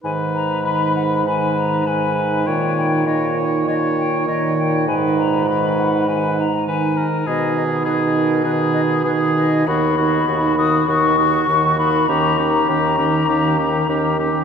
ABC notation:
X:1
M:4/4
L:1/16
Q:1/4=100
K:G#m
V:1 name="Flute"
g2 a2 b2 f2 g2 a2 g4 | =g2 g2 d2 c2 d2 g2 d2 g2 | g2 a2 b2 f2 g2 a2 g3 z | d2 d2 B2 A2 B2 d2 B2 d2 |
[K:B] b6 d'2 c'6 b2 | a3 a8- a3 z2 |]
V:2 name="Oboe"
B4 B4 B4 B4 | c4 c4 c4 c4 | B4 B4 B2 z2 B2 A2 | G4 G4 G4 G4 |
[K:B] F2 F2 F2 F2 F2 F2 F2 F2 | =G2 G2 G2 G2 G2 G2 G2 G2 |]
V:3 name="Clarinet"
D4 D4 D4 D4 | D4 D4 D4 D4 | D4 D4 D2 z2 D4 | D4 D4 D4 D4 |
[K:B] D2 D2 D2 D2 D2 D2 D2 D2 | C2 C2 C2 C2 C2 C2 C2 C2 |]
V:4 name="French horn" clef=bass
D,4 D,4 D,4 D,4 | D,4 D,4 D,4 D,4 | D,4 D,4 D,2 z2 D,4 | D,4 D,4 D,4 D,4 |
[K:B] D,2 D,2 D,2 D,2 D,2 D,2 D,2 D,2 | D,2 D,2 D,2 D,2 D,2 D,2 D,2 D,2 |]
V:5 name="Bassoon" clef=bass
G,,16 | A,,16 | G,,12- G,,2 z2 | B,,16 |
[K:B] D,,4 D,,4 D,,4 D,,4 | D,,4 D,,4 D,,4 D,,4 |]